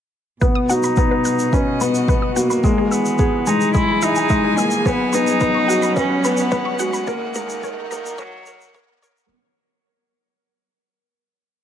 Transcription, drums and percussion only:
0.42 kick medium
0.42 shaker soft
0.70 shaker medium
0.83 shaker medium
0.97 kick medium
0.97 shaker soft
1.25 shaker medium
1.39 shaker medium
1.53 kick medium
1.53 shaker soft
1.81 shaker medium
1.95 shaker medium
2.08 kick loud
2.08 shaker soft
2.37 shaker medium
2.50 shaker medium
2.64 kick medium
2.64 shaker soft
2.92 shaker medium
3.06 shaker soft
3.19 kick loud
3.19 shaker soft
3.47 shaker medium
3.61 shaker soft
3.74 kick loud
3.74 shaker soft
4.02 shaker medium
4.15 shaker medium
4.29 kick loud
4.29 shaker soft
4.58 shaker medium
4.71 shaker medium
4.86 kick loud
4.86 shaker soft
5.13 shaker medium
5.27 shaker medium
5.41 kick loud
5.41 shaker medium
5.70 shaker medium
5.82 shaker medium
5.97 kick loud
5.97 shaker soft
6.24 shaker medium
6.37 shaker medium
6.52 kick loud
6.52 shaker soft
6.79 shaker medium
6.94 shaker medium
7.07 kick loud
7.07 shaker soft
7.35 shaker medium
7.50 shaker medium
7.63 kick loud
7.63 shaker medium
7.91 shaker medium
8.06 shaker medium
8.18 kick loud
8.18 shaker soft
8.46 shaker medium
8.61 shaker medium
8.75 kick loud
8.75 shaker soft
9.03 shaker medium
9.17 shaker medium

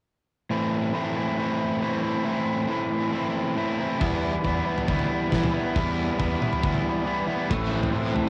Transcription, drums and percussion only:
4.01 kick medium
4.01 floor tom medium
4.44 kick medium
4.44 floor tom medium
4.78 floor tom medium
4.88 kick loud
4.99 floor tom medium
5.32 kick medium
5.32 snare medium
5.32 mid tom medium
5.44 floor tom medium
5.44 mid tom medium
5.76 kick medium
5.76 floor tom medium
6.20 kick medium
6.20 floor tom medium
6.42 mid tom medium
6.53 floor tom medium
6.64 kick loud
6.74 floor tom medium
7.51 kick medium
7.51 floor tom medium
7.51 crash medium
7.83 floor tom medium
8.16 floor tom medium

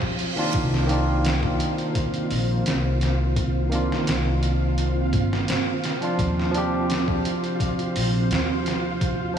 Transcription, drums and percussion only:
0.02 kick medium
0.19 closed hi-hat medium
0.37 closed hi-hat soft
0.54 kick loud
0.54 closed hi-hat medium
0.74 snare soft
0.89 closed hi-hat medium
1.25 snare loud
1.25 closed hi-hat medium
1.43 kick medium
1.60 closed hi-hat medium
1.78 closed hi-hat soft
1.95 kick loud
1.95 closed hi-hat medium
2.14 closed hi-hat soft
2.31 open hi-hat medium
2.66 snare loud
2.66 closed hi-hat medium
3.01 snare soft
3.01 closed hi-hat medium
3.36 kick loud
3.36 closed hi-hat medium
3.72 closed hi-hat medium
3.92 snare medium
4.07 snare loud
4.07 closed hi-hat medium
4.43 closed hi-hat medium
4.78 closed hi-hat medium
5.13 kick medium
5.13 closed hi-hat medium
5.33 snare soft
5.48 snare loud
5.48 closed hi-hat medium
5.84 snare medium
5.84 closed hi-hat medium
6.02 closed hi-hat soft
6.19 kick loud
6.19 closed hi-hat medium
6.40 snare soft
6.54 closed hi-hat medium
6.90 snare loud
6.90 closed hi-hat medium
7.08 kick medium
7.25 closed hi-hat medium
7.44 closed hi-hat soft
7.60 kick loud
7.60 closed hi-hat medium
7.79 closed hi-hat soft
7.96 open hi-hat medium
8.31 snare loud
8.31 closed hi-hat medium
8.66 snare medium
8.66 closed hi-hat medium
9.01 kick loud
9.01 closed hi-hat medium

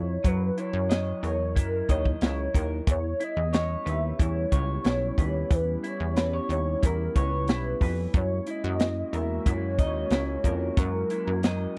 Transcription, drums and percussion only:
0.24 kick loud
0.24 closed hi-hat medium
0.58 closed hi-hat medium
0.91 snare loud
0.91 closed hi-hat medium
1.24 closed hi-hat medium
1.56 kick medium
1.56 closed hi-hat medium
1.89 kick medium
1.89 closed hi-hat medium
2.05 kick medium
2.21 snare loud
2.21 closed hi-hat medium
2.54 kick medium
2.54 closed hi-hat medium
2.87 kick loud
2.87 closed hi-hat medium
3.20 closed hi-hat medium
3.53 snare loud
3.53 closed hi-hat medium
3.87 closed hi-hat medium
4.19 kick medium
4.19 closed hi-hat medium
4.52 kick medium
4.52 closed hi-hat medium
4.84 snare loud
4.84 closed hi-hat medium
5.18 kick medium
5.18 closed hi-hat medium
5.51 kick loud
5.51 closed hi-hat medium
5.84 closed hi-hat medium
6.16 snare loud
6.16 closed hi-hat medium
6.50 closed hi-hat medium
6.83 kick medium
6.83 closed hi-hat loud
7.16 kick medium
7.16 closed hi-hat medium
7.48 snare loud
7.48 closed hi-hat medium
7.81 kick medium
7.81 open hi-hat medium
8.14 kick loud
8.14 closed hi-hat medium
8.47 closed hi-hat medium
8.80 snare loud
8.80 closed hi-hat medium
9.13 closed hi-hat medium
9.46 kick medium
9.46 closed hi-hat medium
9.79 kick medium
9.79 closed hi-hat medium
10.10 snare loud
10.10 closed hi-hat medium
10.44 kick medium
10.44 closed hi-hat medium
10.77 kick loud
10.77 closed hi-hat loud
11.10 closed hi-hat medium
11.43 snare loud
11.43 closed hi-hat medium

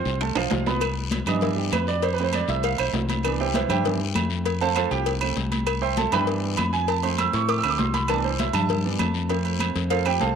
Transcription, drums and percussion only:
0.05 high conga soft
0.05 short guiro medium
0.21 high bongo medium
0.21 high conga soft
0.21 high timbale medium
0.21 long guiro medium
0.35 high bongo soft
0.35 high conga soft
0.35 high timbale loud
0.35 claves medium
0.50 high bongo soft
0.50 low bongo medium
0.50 high conga medium
0.50 low timbale medium
0.50 short guiro medium
0.66 high bongo soft
0.66 high conga medium
0.66 low timbale medium
0.66 short guiro medium
0.81 cowbell loud
0.81 high conga soft
0.81 low agogo loud
0.81 long guiro medium
0.81 claves medium
0.96 high conga soft
1.11 cowbell medium
1.11 high conga loud
1.11 low agogo medium
1.11 short guiro medium
1.26 high conga soft
1.26 low conga medium
1.26 low agogo loud
1.26 short guiro medium
1.26 claves medium
1.41 cowbell loud
1.41 high conga soft
1.41 low conga medium
1.41 long guiro medium
1.57 high conga soft
1.71 cowbell medium
1.71 high conga medium
1.71 low timbale medium
1.71 low agogo loud
1.71 short guiro medium
1.71 claves medium
1.87 high conga soft
1.87 short guiro medium
2.02 cowbell loud
2.02 high conga soft
2.02 low agogo medium
2.02 long guiro medium
2.18 high conga soft
2.18 low agogo medium
2.33 cowbell medium
2.33 high conga medium
2.33 low agogo loud
2.33 short guiro medium
2.33 claves medium
2.48 cowbell medium
2.48 high conga soft
2.48 short guiro medium
2.63 cowbell loud
2.63 high conga soft
2.63 low agogo medium
2.63 long guiro medium
2.78 high conga soft
2.78 low agogo loud
2.78 claves medium
2.93 cowbell medium
2.93 high conga medium
2.93 low timbale medium
2.93 short guiro medium
3.09 cowbell medium
3.09 high conga medium
3.09 low agogo medium
3.09 short guiro medium
3.23 cowbell loud
3.23 low agogo loud
3.23 long guiro medium
3.23 claves medium
3.39 high conga soft
3.54 cowbell medium
3.54 high conga loud
3.54 low agogo medium
3.54 short guiro medium
3.69 high conga soft
3.69 low conga medium
3.69 low agogo loud
3.69 short guiro medium
3.69 claves medium
3.84 cowbell loud
3.84 high conga soft
3.84 low conga medium
3.84 long guiro medium
4.00 high conga soft
4.15 cowbell medium
4.15 high conga medium
4.15 low agogo loud
4.15 short guiro medium
4.15 claves medium
4.30 high conga soft
4.30 short guiro medium
4.45 cowbell loud
4.45 high conga soft
4.45 low agogo medium
4.45 long guiro medium
4.61 high conga soft
4.61 low agogo medium
4.76 cowbell medium
4.76 high conga medium
4.76 low agogo loud
4.76 short guiro medium
4.76 claves medium
4.91 cowbell medium
4.91 high conga soft
4.91 short guiro medium
5.06 cowbell loud
5.06 high conga soft
5.06 low agogo medium
5.06 long guiro medium
5.21 high conga soft
5.21 low agogo loud
5.21 claves medium
5.36 cowbell medium
5.36 high conga medium
5.36 short guiro medium
5.52 cowbell medium
5.52 high conga medium
5.52 low agogo medium
5.52 short guiro medium
5.67 cowbell loud
5.67 low agogo loud
5.67 long guiro medium
5.67 claves medium
5.82 high conga soft
5.97 cowbell medium
5.97 high conga loud
5.97 low agogo medium
5.97 short guiro medium
6.12 high conga soft
6.12 low conga medium
6.12 low agogo loud
6.12 short guiro medium
6.12 claves medium
6.27 cowbell loud
6.27 high conga soft
6.27 long guiro medium
6.43 high conga soft
6.57 cowbell medium
6.57 high conga medium
6.57 low agogo loud
6.57 short guiro medium
6.57 claves medium
6.73 high conga soft
6.73 short guiro medium
6.88 cowbell loud
6.88 low agogo medium
6.88 long guiro medium
7.03 high conga soft
7.03 low agogo medium
7.18 cowbell medium
7.18 high conga medium
7.18 low agogo loud
7.18 short guiro medium
7.18 claves medium
7.33 cowbell medium
7.33 high conga soft
7.33 short guiro medium
7.49 cowbell loud
7.49 high conga soft
7.49 low agogo medium
7.49 long guiro medium
7.63 high conga soft
7.63 low agogo loud
7.63 claves medium
7.78 cowbell medium
7.78 high conga medium
7.78 low timbale medium
7.78 short guiro medium
7.94 cowbell medium
7.94 high conga medium
7.94 low agogo medium
7.94 short guiro medium
8.08 cowbell loud
8.08 high conga soft
8.08 low agogo loud
8.08 long guiro medium
8.08 claves medium
8.24 high conga soft
8.39 cowbell medium
8.39 high conga loud
8.39 low agogo medium
8.39 short guiro medium
8.53 high conga soft
8.53 low conga medium
8.53 low agogo loud
8.53 short guiro medium
8.53 claves medium
8.69 cowbell loud
8.69 high conga soft
8.69 low conga medium
8.69 long guiro medium
8.85 high conga soft
8.99 cowbell medium
8.99 high conga medium
8.99 low agogo loud
8.99 short guiro medium
8.99 claves medium
9.14 short guiro medium
9.29 cowbell medium
9.29 low agogo medium
9.29 long guiro medium
9.45 high conga soft
9.45 low agogo medium
9.59 cowbell medium
9.59 high conga medium
9.59 low agogo loud
9.59 short guiro medium
9.59 claves medium
9.75 cowbell medium
9.75 high conga soft
9.75 short guiro medium
9.90 cowbell loud
9.90 high conga soft
9.90 low agogo medium
9.90 long guiro medium
10.05 high conga soft
10.05 low agogo loud
10.05 claves medium
10.20 cowbell medium
10.20 high conga medium
10.20 short guiro medium

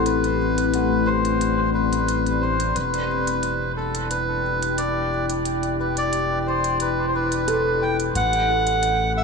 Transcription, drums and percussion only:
0.06 closed hi-hat soft
0.24 closed hi-hat soft
0.58 closed hi-hat soft
0.74 closed hi-hat soft
1.25 closed hi-hat soft
1.41 closed hi-hat soft
1.93 closed hi-hat soft
2.08 closed hi-hat soft
2.26 closed hi-hat soft
2.60 closed hi-hat soft
2.76 closed hi-hat soft
2.94 closed hi-hat soft
3.27 closed hi-hat soft
3.43 closed hi-hat soft
3.95 closed hi-hat soft
4.11 closed hi-hat soft
4.62 closed hi-hat soft
4.78 closed hi-hat soft
5.30 closed hi-hat soft
5.45 closed hi-hat soft
5.63 closed hi-hat soft
5.97 closed hi-hat soft
6.13 closed hi-hat soft
6.64 closed hi-hat soft
6.80 closed hi-hat soft
7.32 closed hi-hat soft
7.48 closed hi-hat soft
8.00 closed hi-hat soft
8.15 closed hi-hat soft
8.33 closed hi-hat soft
8.67 closed hi-hat soft
8.83 closed hi-hat soft

